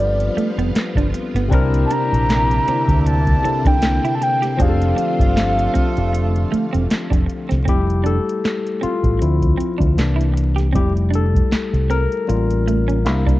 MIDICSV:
0, 0, Header, 1, 10, 480
1, 0, Start_track
1, 0, Key_signature, -1, "major"
1, 0, Tempo, 769231
1, 947, Time_signature, 4, 2, 24, 8
1, 8360, End_track
2, 0, Start_track
2, 0, Title_t, "Soft synth lead"
2, 0, Program_c, 0, 80
2, 0, Note_on_c, 0, 74, 96
2, 679, Note_off_c, 0, 74, 0
2, 1155, Note_on_c, 0, 81, 85
2, 1193, Note_on_c, 0, 82, 127
2, 1203, Note_off_c, 0, 81, 0
2, 1910, Note_off_c, 0, 82, 0
2, 1917, Note_on_c, 0, 81, 111
2, 2289, Note_on_c, 0, 79, 100
2, 2299, Note_off_c, 0, 81, 0
2, 2586, Note_off_c, 0, 79, 0
2, 2590, Note_on_c, 0, 81, 62
2, 2638, Note_on_c, 0, 79, 88
2, 2647, Note_off_c, 0, 81, 0
2, 2881, Note_on_c, 0, 77, 93
2, 2890, Note_off_c, 0, 79, 0
2, 4314, Note_off_c, 0, 77, 0
2, 8360, End_track
3, 0, Start_track
3, 0, Title_t, "Horn section"
3, 0, Program_c, 1, 61
3, 939, Note_on_c, 1, 62, 76
3, 939, Note_on_c, 1, 64, 81
3, 942, Note_on_c, 1, 55, 80
3, 942, Note_on_c, 1, 67, 87
3, 2598, Note_off_c, 1, 62, 0
3, 2598, Note_off_c, 1, 64, 0
3, 2600, Note_off_c, 1, 55, 0
3, 2600, Note_off_c, 1, 67, 0
3, 2868, Note_on_c, 1, 62, 68
3, 2869, Note_on_c, 1, 65, 83
3, 2870, Note_on_c, 1, 57, 74
3, 2870, Note_on_c, 1, 69, 80
3, 4523, Note_off_c, 1, 62, 0
3, 4523, Note_off_c, 1, 65, 0
3, 4524, Note_off_c, 1, 57, 0
3, 4524, Note_off_c, 1, 69, 0
3, 8360, End_track
4, 0, Start_track
4, 0, Title_t, "Tine electric piano"
4, 0, Program_c, 2, 4
4, 0, Control_c, 2, 64, 127
4, 0, Note_on_c, 2, 55, 66
4, 0, Note_on_c, 2, 62, 61
4, 0, Note_on_c, 2, 65, 59
4, 0, Note_on_c, 2, 67, 62
4, 0, Note_on_c, 2, 69, 60
4, 0, Note_on_c, 2, 71, 76
4, 913, Note_off_c, 2, 55, 0
4, 914, Note_off_c, 2, 62, 0
4, 920, Note_off_c, 2, 67, 0
4, 924, Note_off_c, 2, 65, 0
4, 924, Note_on_c, 2, 48, 73
4, 927, Note_off_c, 2, 69, 0
4, 931, Note_off_c, 2, 71, 0
4, 933, Note_on_c, 2, 60, 73
4, 941, Note_on_c, 2, 62, 79
4, 951, Note_on_c, 2, 64, 68
4, 955, Control_c, 2, 64, 0
4, 961, Note_on_c, 2, 70, 90
4, 1061, Control_c, 2, 64, 127
4, 2111, Note_off_c, 2, 48, 0
4, 2116, Note_off_c, 2, 60, 0
4, 2120, Note_off_c, 2, 62, 0
4, 2125, Note_off_c, 2, 64, 0
4, 2130, Note_off_c, 2, 70, 0
4, 2137, Note_on_c, 2, 48, 54
4, 2142, Note_on_c, 2, 60, 47
4, 2145, Note_on_c, 2, 62, 48
4, 2152, Note_on_c, 2, 64, 51
4, 2158, Note_on_c, 2, 69, 53
4, 2853, Note_on_c, 2, 53, 75
4, 2854, Note_off_c, 2, 60, 0
4, 2861, Note_on_c, 2, 60, 63
4, 2862, Note_off_c, 2, 48, 0
4, 2863, Note_off_c, 2, 62, 0
4, 2870, Note_off_c, 2, 64, 0
4, 2870, Note_on_c, 2, 62, 61
4, 2872, Note_off_c, 2, 69, 0
4, 2875, Control_c, 2, 64, 0
4, 2881, Note_on_c, 2, 67, 61
4, 2886, Note_on_c, 2, 68, 61
4, 2921, Note_off_c, 2, 68, 0
4, 2928, Note_on_c, 2, 69, 73
4, 2969, Control_c, 2, 64, 127
4, 4755, Note_off_c, 2, 53, 0
4, 4759, Note_off_c, 2, 60, 0
4, 4764, Note_off_c, 2, 62, 0
4, 4769, Note_off_c, 2, 67, 0
4, 4792, Note_on_c, 2, 55, 54
4, 4793, Note_off_c, 2, 69, 0
4, 4793, Note_on_c, 2, 57, 49
4, 4796, Control_c, 2, 64, 0
4, 4797, Note_on_c, 2, 64, 64
4, 4799, Note_on_c, 2, 67, 94
4, 4905, Note_off_c, 2, 67, 0
4, 4911, Control_c, 2, 64, 127
4, 5032, Note_on_c, 2, 69, 87
4, 5485, Note_off_c, 2, 55, 0
4, 5485, Note_off_c, 2, 57, 0
4, 5485, Note_off_c, 2, 69, 0
4, 5487, Note_off_c, 2, 64, 0
4, 5509, Note_on_c, 2, 65, 85
4, 5745, Note_on_c, 2, 53, 51
4, 5751, Note_on_c, 2, 60, 46
4, 5753, Note_on_c, 2, 64, 57
4, 5754, Control_c, 2, 64, 0
4, 5864, Control_c, 2, 64, 127
4, 6075, Note_off_c, 2, 53, 0
4, 6078, Note_off_c, 2, 60, 0
4, 6079, Note_off_c, 2, 64, 0
4, 6203, Note_off_c, 2, 65, 0
4, 6225, Note_on_c, 2, 52, 54
4, 6225, Note_on_c, 2, 58, 50
4, 6232, Note_on_c, 2, 62, 59
4, 6236, Control_c, 2, 64, 0
4, 6343, Control_c, 2, 64, 127
4, 6682, Note_off_c, 2, 52, 0
4, 6682, Note_off_c, 2, 58, 0
4, 6686, Note_off_c, 2, 62, 0
4, 6705, Note_on_c, 2, 55, 57
4, 6708, Note_on_c, 2, 57, 50
4, 6710, Note_on_c, 2, 64, 59
4, 6711, Note_on_c, 2, 67, 89
4, 6717, Control_c, 2, 64, 0
4, 6818, Note_off_c, 2, 67, 0
4, 6840, Control_c, 2, 64, 127
4, 6959, Note_on_c, 2, 69, 84
4, 7401, Note_off_c, 2, 55, 0
4, 7403, Note_off_c, 2, 57, 0
4, 7404, Note_off_c, 2, 64, 0
4, 7408, Note_off_c, 2, 69, 0
4, 7430, Note_on_c, 2, 70, 101
4, 7657, Note_on_c, 2, 55, 55
4, 7661, Note_on_c, 2, 61, 45
4, 7662, Note_on_c, 2, 58, 47
4, 7664, Note_on_c, 2, 65, 60
4, 7675, Control_c, 2, 64, 0
4, 7801, Control_c, 2, 64, 127
4, 7991, Note_off_c, 2, 55, 0
4, 7993, Note_off_c, 2, 61, 0
4, 7994, Note_off_c, 2, 58, 0
4, 7995, Note_off_c, 2, 65, 0
4, 8123, Note_off_c, 2, 70, 0
4, 8141, Note_on_c, 2, 58, 61
4, 8147, Note_on_c, 2, 62, 46
4, 8148, Note_on_c, 2, 64, 64
4, 8154, Control_c, 2, 64, 0
4, 8257, Control_c, 2, 64, 127
4, 8360, Note_off_c, 2, 58, 0
4, 8360, Note_off_c, 2, 62, 0
4, 8360, Note_off_c, 2, 64, 0
4, 8360, End_track
5, 0, Start_track
5, 0, Title_t, "Clean electric guitar"
5, 0, Program_c, 3, 27
5, 231, Note_on_c, 3, 57, 75
5, 307, Note_off_c, 3, 57, 0
5, 366, Note_on_c, 3, 59, 82
5, 427, Note_off_c, 3, 59, 0
5, 606, Note_on_c, 3, 62, 63
5, 666, Note_off_c, 3, 62, 0
5, 846, Note_on_c, 3, 59, 69
5, 907, Note_off_c, 3, 59, 0
5, 956, Note_on_c, 3, 60, 78
5, 1030, Note_off_c, 3, 60, 0
5, 1190, Note_on_c, 3, 62, 76
5, 1266, Note_off_c, 3, 62, 0
5, 1674, Note_on_c, 3, 60, 83
5, 1749, Note_off_c, 3, 60, 0
5, 2149, Note_on_c, 3, 60, 87
5, 2225, Note_off_c, 3, 60, 0
5, 2286, Note_on_c, 3, 62, 82
5, 2347, Note_off_c, 3, 62, 0
5, 2524, Note_on_c, 3, 64, 67
5, 2585, Note_off_c, 3, 64, 0
5, 2759, Note_on_c, 3, 67, 73
5, 2821, Note_off_c, 3, 67, 0
5, 2862, Note_on_c, 3, 60, 84
5, 2940, Note_off_c, 3, 60, 0
5, 3099, Note_on_c, 3, 62, 60
5, 3178, Note_off_c, 3, 62, 0
5, 3581, Note_on_c, 3, 60, 76
5, 3660, Note_off_c, 3, 60, 0
5, 4067, Note_on_c, 3, 57, 82
5, 4144, Note_off_c, 3, 57, 0
5, 4198, Note_on_c, 3, 60, 82
5, 4260, Note_off_c, 3, 60, 0
5, 4432, Note_on_c, 3, 62, 64
5, 4496, Note_off_c, 3, 62, 0
5, 4674, Note_on_c, 3, 60, 64
5, 4738, Note_off_c, 3, 60, 0
5, 4776, Note_on_c, 3, 60, 76
5, 4856, Note_off_c, 3, 60, 0
5, 5016, Note_on_c, 3, 62, 69
5, 5096, Note_off_c, 3, 62, 0
5, 5499, Note_on_c, 3, 60, 70
5, 5578, Note_off_c, 3, 60, 0
5, 5976, Note_on_c, 3, 60, 76
5, 6056, Note_off_c, 3, 60, 0
5, 6104, Note_on_c, 3, 62, 73
5, 6171, Note_off_c, 3, 62, 0
5, 6341, Note_on_c, 3, 64, 63
5, 6408, Note_off_c, 3, 64, 0
5, 6589, Note_on_c, 3, 67, 70
5, 6654, Note_off_c, 3, 67, 0
5, 6693, Note_on_c, 3, 60, 78
5, 6774, Note_off_c, 3, 60, 0
5, 6929, Note_on_c, 3, 62, 58
5, 7011, Note_off_c, 3, 62, 0
5, 7425, Note_on_c, 3, 60, 69
5, 7502, Note_off_c, 3, 60, 0
5, 7909, Note_on_c, 3, 57, 72
5, 7985, Note_off_c, 3, 57, 0
5, 8036, Note_on_c, 3, 61, 82
5, 8099, Note_off_c, 3, 61, 0
5, 8277, Note_on_c, 3, 62, 72
5, 8340, Note_off_c, 3, 62, 0
5, 8360, End_track
6, 0, Start_track
6, 0, Title_t, "String machine"
6, 0, Program_c, 4, 50
6, 0, Note_on_c, 4, 53, 83
6, 0, Note_on_c, 4, 59, 69
6, 0, Note_on_c, 4, 60, 67
6, 0, Note_on_c, 4, 65, 80
6, 924, Note_off_c, 4, 60, 0
6, 929, Note_off_c, 4, 53, 0
6, 930, Note_off_c, 4, 65, 0
6, 932, Note_off_c, 4, 59, 0
6, 935, Note_on_c, 4, 64, 84
6, 936, Note_on_c, 4, 50, 74
6, 936, Note_on_c, 4, 58, 69
6, 938, Note_on_c, 4, 60, 70
6, 2842, Note_off_c, 4, 58, 0
6, 2842, Note_off_c, 4, 64, 0
6, 2863, Note_on_c, 4, 57, 64
6, 2865, Note_on_c, 4, 65, 85
6, 4757, Note_off_c, 4, 50, 0
6, 4758, Note_off_c, 4, 60, 0
6, 4766, Note_off_c, 4, 57, 0
6, 4767, Note_off_c, 4, 65, 0
6, 8360, End_track
7, 0, Start_track
7, 0, Title_t, "Fingered electric bass"
7, 0, Program_c, 5, 33
7, 0, Note_on_c, 5, 31, 75
7, 172, Note_off_c, 5, 31, 0
7, 361, Note_on_c, 5, 29, 89
7, 450, Note_off_c, 5, 29, 0
7, 595, Note_on_c, 5, 31, 86
7, 688, Note_off_c, 5, 31, 0
7, 837, Note_on_c, 5, 31, 81
7, 929, Note_off_c, 5, 31, 0
7, 944, Note_on_c, 5, 36, 106
7, 1147, Note_off_c, 5, 36, 0
7, 1324, Note_on_c, 5, 34, 83
7, 1615, Note_off_c, 5, 34, 0
7, 1800, Note_on_c, 5, 38, 82
7, 2092, Note_off_c, 5, 38, 0
7, 2279, Note_on_c, 5, 36, 88
7, 2481, Note_off_c, 5, 36, 0
7, 2866, Note_on_c, 5, 29, 104
7, 3068, Note_off_c, 5, 29, 0
7, 3242, Note_on_c, 5, 31, 88
7, 3533, Note_off_c, 5, 31, 0
7, 3730, Note_on_c, 5, 29, 86
7, 4018, Note_off_c, 5, 29, 0
7, 4207, Note_on_c, 5, 28, 74
7, 4294, Note_off_c, 5, 28, 0
7, 4438, Note_on_c, 5, 29, 93
7, 4529, Note_off_c, 5, 29, 0
7, 4690, Note_on_c, 5, 36, 79
7, 4776, Note_off_c, 5, 36, 0
7, 4788, Note_on_c, 5, 29, 93
7, 5101, Note_off_c, 5, 29, 0
7, 5639, Note_on_c, 5, 33, 87
7, 5729, Note_off_c, 5, 33, 0
7, 5752, Note_on_c, 5, 38, 100
7, 5952, Note_off_c, 5, 38, 0
7, 6118, Note_on_c, 5, 38, 92
7, 6209, Note_off_c, 5, 38, 0
7, 6227, Note_on_c, 5, 36, 97
7, 6707, Note_on_c, 5, 29, 99
7, 6716, Note_off_c, 5, 36, 0
7, 7111, Note_off_c, 5, 29, 0
7, 7321, Note_on_c, 5, 36, 73
7, 7523, Note_off_c, 5, 36, 0
7, 7670, Note_on_c, 5, 33, 102
7, 8150, Note_off_c, 5, 33, 0
7, 8150, Note_on_c, 5, 36, 104
7, 8351, Note_off_c, 5, 36, 0
7, 8360, End_track
8, 0, Start_track
8, 0, Title_t, "Muted clean electric guitar strokes"
8, 713, Note_on_c, 9, 29, 37
8, 775, Note_off_c, 9, 29, 0
8, 1910, Note_on_c, 9, 29, 45
8, 1973, Note_off_c, 9, 29, 0
8, 2630, Note_on_c, 9, 29, 42
8, 2692, Note_off_c, 9, 29, 0
8, 3827, Note_on_c, 9, 29, 40
8, 3889, Note_off_c, 9, 29, 0
8, 4532, Note_on_c, 9, 29, 37
8, 4594, Note_off_c, 9, 29, 0
8, 5736, Note_on_c, 9, 29, 40
8, 5799, Note_off_c, 9, 29, 0
8, 6450, Note_on_c, 9, 29, 39
8, 6512, Note_off_c, 9, 29, 0
8, 7668, Note_on_c, 9, 29, 42
8, 7731, Note_off_c, 9, 29, 0
8, 8360, End_track
9, 0, Start_track
9, 0, Title_t, "Muted fingered electric bass strokes"
9, 228, Note_on_c, 9, 29, 46
9, 291, Note_off_c, 9, 29, 0
9, 1669, Note_on_c, 9, 29, 48
9, 1731, Note_off_c, 9, 29, 0
9, 2155, Note_on_c, 9, 29, 48
9, 2218, Note_off_c, 9, 29, 0
9, 3591, Note_on_c, 9, 29, 52
9, 3654, Note_off_c, 9, 29, 0
9, 4075, Note_on_c, 9, 29, 44
9, 4138, Note_off_c, 9, 29, 0
9, 4315, Note_on_c, 9, 29, 45
9, 4377, Note_off_c, 9, 29, 0
9, 5514, Note_on_c, 9, 29, 46
9, 5577, Note_off_c, 9, 29, 0
9, 5994, Note_on_c, 9, 29, 42
9, 6056, Note_off_c, 9, 29, 0
9, 7193, Note_on_c, 9, 29, 45
9, 7255, Note_off_c, 9, 29, 0
9, 8360, End_track
10, 0, Start_track
10, 0, Title_t, "Drums"
10, 124, Note_on_c, 9, 42, 43
10, 187, Note_off_c, 9, 42, 0
10, 237, Note_on_c, 9, 42, 63
10, 299, Note_off_c, 9, 42, 0
10, 368, Note_on_c, 9, 42, 48
10, 430, Note_off_c, 9, 42, 0
10, 470, Note_on_c, 9, 42, 75
10, 475, Note_on_c, 9, 38, 109
10, 480, Note_on_c, 9, 39, 88
10, 533, Note_off_c, 9, 42, 0
10, 537, Note_off_c, 9, 38, 0
10, 542, Note_off_c, 9, 39, 0
10, 593, Note_on_c, 9, 36, 81
10, 612, Note_on_c, 9, 42, 52
10, 655, Note_off_c, 9, 36, 0
10, 674, Note_off_c, 9, 42, 0
10, 712, Note_on_c, 9, 42, 80
10, 775, Note_off_c, 9, 42, 0
10, 846, Note_on_c, 9, 42, 47
10, 853, Note_on_c, 9, 38, 31
10, 909, Note_off_c, 9, 42, 0
10, 915, Note_off_c, 9, 38, 0
10, 941, Note_on_c, 9, 36, 110
10, 950, Note_on_c, 9, 42, 91
10, 1004, Note_off_c, 9, 36, 0
10, 1013, Note_off_c, 9, 42, 0
10, 1084, Note_on_c, 9, 42, 43
10, 1147, Note_off_c, 9, 42, 0
10, 1188, Note_on_c, 9, 42, 76
10, 1250, Note_off_c, 9, 42, 0
10, 1335, Note_on_c, 9, 42, 47
10, 1398, Note_off_c, 9, 42, 0
10, 1434, Note_on_c, 9, 38, 119
10, 1437, Note_on_c, 9, 42, 90
10, 1439, Note_on_c, 9, 39, 91
10, 1496, Note_off_c, 9, 38, 0
10, 1500, Note_off_c, 9, 42, 0
10, 1501, Note_off_c, 9, 39, 0
10, 1567, Note_on_c, 9, 42, 42
10, 1630, Note_off_c, 9, 42, 0
10, 1671, Note_on_c, 9, 42, 67
10, 1734, Note_off_c, 9, 42, 0
10, 1796, Note_on_c, 9, 36, 85
10, 1804, Note_on_c, 9, 42, 38
10, 1859, Note_off_c, 9, 36, 0
10, 1867, Note_off_c, 9, 42, 0
10, 1913, Note_on_c, 9, 42, 78
10, 1975, Note_off_c, 9, 42, 0
10, 2038, Note_on_c, 9, 36, 90
10, 2041, Note_on_c, 9, 42, 41
10, 2100, Note_off_c, 9, 36, 0
10, 2103, Note_off_c, 9, 42, 0
10, 2153, Note_on_c, 9, 42, 76
10, 2215, Note_off_c, 9, 42, 0
10, 2275, Note_on_c, 9, 36, 85
10, 2281, Note_on_c, 9, 42, 46
10, 2337, Note_off_c, 9, 36, 0
10, 2343, Note_off_c, 9, 42, 0
10, 2383, Note_on_c, 9, 42, 82
10, 2387, Note_on_c, 9, 38, 112
10, 2392, Note_on_c, 9, 39, 88
10, 2445, Note_off_c, 9, 42, 0
10, 2449, Note_off_c, 9, 38, 0
10, 2454, Note_off_c, 9, 39, 0
10, 2527, Note_on_c, 9, 42, 50
10, 2589, Note_off_c, 9, 42, 0
10, 2632, Note_on_c, 9, 42, 77
10, 2695, Note_off_c, 9, 42, 0
10, 2763, Note_on_c, 9, 42, 48
10, 2770, Note_on_c, 9, 38, 32
10, 2826, Note_off_c, 9, 42, 0
10, 2832, Note_off_c, 9, 38, 0
10, 2865, Note_on_c, 9, 36, 113
10, 2869, Note_on_c, 9, 42, 91
10, 2927, Note_off_c, 9, 36, 0
10, 2931, Note_off_c, 9, 42, 0
10, 3006, Note_on_c, 9, 42, 45
10, 3068, Note_off_c, 9, 42, 0
10, 3108, Note_on_c, 9, 42, 78
10, 3170, Note_off_c, 9, 42, 0
10, 3239, Note_on_c, 9, 36, 107
10, 3252, Note_on_c, 9, 42, 51
10, 3301, Note_off_c, 9, 36, 0
10, 3314, Note_off_c, 9, 42, 0
10, 3350, Note_on_c, 9, 38, 111
10, 3353, Note_on_c, 9, 42, 86
10, 3355, Note_on_c, 9, 39, 97
10, 3412, Note_off_c, 9, 38, 0
10, 3416, Note_off_c, 9, 42, 0
10, 3417, Note_off_c, 9, 39, 0
10, 3488, Note_on_c, 9, 42, 41
10, 3550, Note_off_c, 9, 42, 0
10, 3589, Note_on_c, 9, 36, 96
10, 3589, Note_on_c, 9, 42, 71
10, 3595, Note_on_c, 9, 38, 35
10, 3651, Note_off_c, 9, 42, 0
10, 3652, Note_off_c, 9, 36, 0
10, 3658, Note_off_c, 9, 38, 0
10, 3725, Note_on_c, 9, 42, 39
10, 3787, Note_off_c, 9, 42, 0
10, 3835, Note_on_c, 9, 42, 90
10, 3897, Note_off_c, 9, 42, 0
10, 3967, Note_on_c, 9, 42, 40
10, 4029, Note_off_c, 9, 42, 0
10, 4078, Note_on_c, 9, 42, 71
10, 4140, Note_off_c, 9, 42, 0
10, 4207, Note_on_c, 9, 42, 48
10, 4270, Note_off_c, 9, 42, 0
10, 4307, Note_on_c, 9, 42, 82
10, 4312, Note_on_c, 9, 38, 110
10, 4317, Note_on_c, 9, 39, 81
10, 4370, Note_off_c, 9, 42, 0
10, 4374, Note_off_c, 9, 38, 0
10, 4379, Note_off_c, 9, 39, 0
10, 4434, Note_on_c, 9, 36, 87
10, 4448, Note_on_c, 9, 42, 54
10, 4497, Note_off_c, 9, 36, 0
10, 4511, Note_off_c, 9, 42, 0
10, 4552, Note_on_c, 9, 42, 71
10, 4614, Note_off_c, 9, 42, 0
10, 4685, Note_on_c, 9, 42, 45
10, 4691, Note_on_c, 9, 38, 33
10, 4747, Note_off_c, 9, 42, 0
10, 4754, Note_off_c, 9, 38, 0
10, 4785, Note_on_c, 9, 36, 99
10, 4792, Note_on_c, 9, 42, 95
10, 4847, Note_off_c, 9, 36, 0
10, 4854, Note_off_c, 9, 42, 0
10, 4930, Note_on_c, 9, 42, 42
10, 4993, Note_off_c, 9, 42, 0
10, 5030, Note_on_c, 9, 42, 65
10, 5092, Note_off_c, 9, 42, 0
10, 5174, Note_on_c, 9, 42, 43
10, 5237, Note_off_c, 9, 42, 0
10, 5273, Note_on_c, 9, 38, 116
10, 5276, Note_on_c, 9, 42, 83
10, 5278, Note_on_c, 9, 39, 88
10, 5335, Note_off_c, 9, 38, 0
10, 5339, Note_off_c, 9, 42, 0
10, 5340, Note_off_c, 9, 39, 0
10, 5408, Note_on_c, 9, 42, 35
10, 5470, Note_off_c, 9, 42, 0
10, 5510, Note_on_c, 9, 42, 58
10, 5572, Note_off_c, 9, 42, 0
10, 5636, Note_on_c, 9, 36, 74
10, 5642, Note_on_c, 9, 42, 39
10, 5698, Note_off_c, 9, 36, 0
10, 5705, Note_off_c, 9, 42, 0
10, 5752, Note_on_c, 9, 42, 76
10, 5814, Note_off_c, 9, 42, 0
10, 5879, Note_on_c, 9, 36, 87
10, 5882, Note_on_c, 9, 42, 45
10, 5941, Note_off_c, 9, 36, 0
10, 5944, Note_off_c, 9, 42, 0
10, 5994, Note_on_c, 9, 42, 72
10, 6056, Note_off_c, 9, 42, 0
10, 6116, Note_on_c, 9, 36, 92
10, 6126, Note_on_c, 9, 42, 43
10, 6178, Note_off_c, 9, 36, 0
10, 6189, Note_off_c, 9, 42, 0
10, 6230, Note_on_c, 9, 42, 70
10, 6234, Note_on_c, 9, 38, 97
10, 6239, Note_on_c, 9, 39, 86
10, 6292, Note_off_c, 9, 42, 0
10, 6296, Note_off_c, 9, 38, 0
10, 6301, Note_off_c, 9, 39, 0
10, 6370, Note_on_c, 9, 42, 52
10, 6433, Note_off_c, 9, 42, 0
10, 6473, Note_on_c, 9, 42, 76
10, 6535, Note_off_c, 9, 42, 0
10, 6603, Note_on_c, 9, 42, 49
10, 6610, Note_on_c, 9, 38, 30
10, 6666, Note_off_c, 9, 42, 0
10, 6672, Note_off_c, 9, 38, 0
10, 6703, Note_on_c, 9, 36, 101
10, 6711, Note_on_c, 9, 42, 89
10, 6766, Note_off_c, 9, 36, 0
10, 6774, Note_off_c, 9, 42, 0
10, 6845, Note_on_c, 9, 42, 41
10, 6907, Note_off_c, 9, 42, 0
10, 6948, Note_on_c, 9, 42, 68
10, 7011, Note_off_c, 9, 42, 0
10, 7078, Note_on_c, 9, 36, 96
10, 7090, Note_on_c, 9, 42, 45
10, 7140, Note_off_c, 9, 36, 0
10, 7153, Note_off_c, 9, 42, 0
10, 7189, Note_on_c, 9, 38, 116
10, 7192, Note_on_c, 9, 42, 94
10, 7194, Note_on_c, 9, 39, 95
10, 7252, Note_off_c, 9, 38, 0
10, 7255, Note_off_c, 9, 42, 0
10, 7257, Note_off_c, 9, 39, 0
10, 7328, Note_on_c, 9, 42, 37
10, 7390, Note_off_c, 9, 42, 0
10, 7429, Note_on_c, 9, 42, 65
10, 7491, Note_off_c, 9, 42, 0
10, 7564, Note_on_c, 9, 42, 42
10, 7626, Note_off_c, 9, 42, 0
10, 7671, Note_on_c, 9, 42, 73
10, 7734, Note_off_c, 9, 42, 0
10, 7802, Note_on_c, 9, 42, 44
10, 7864, Note_off_c, 9, 42, 0
10, 7912, Note_on_c, 9, 42, 72
10, 7975, Note_off_c, 9, 42, 0
10, 8046, Note_on_c, 9, 42, 45
10, 8108, Note_off_c, 9, 42, 0
10, 8148, Note_on_c, 9, 42, 69
10, 8152, Note_on_c, 9, 38, 109
10, 8157, Note_on_c, 9, 39, 86
10, 8210, Note_off_c, 9, 42, 0
10, 8214, Note_off_c, 9, 38, 0
10, 8219, Note_off_c, 9, 39, 0
10, 8275, Note_on_c, 9, 36, 92
10, 8292, Note_on_c, 9, 42, 47
10, 8338, Note_off_c, 9, 36, 0
10, 8354, Note_off_c, 9, 42, 0
10, 8360, End_track
0, 0, End_of_file